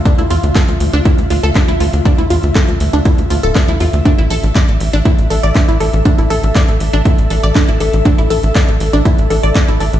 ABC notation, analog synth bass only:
X:1
M:4/4
L:1/16
Q:1/4=120
K:Dm
V:1 name="Analog synth bass" clef=bass
z D,, E,, D,, z D,, D,, D,, z D,, D,, D,, z D,, D,, D,, | z D,, E,, D,, z D,, D,, D,, z D,, D,, D,,, z D,, E,, D,, | z A,,, B,,, A,,, z A,,, A,,, A,,, z A,,, A,,, A,,, z A,,, A,,, A,,, | z A,,, B,,, A,,, z A,,, A,,, A,,, z A,,, A,,, A,,, z A,,, A,,, A,,, |
z A,,, B,,, A,,, z A,,, A,,, A,,, z A,,, A,,, A,,, z A,,, A,,, A,,, |]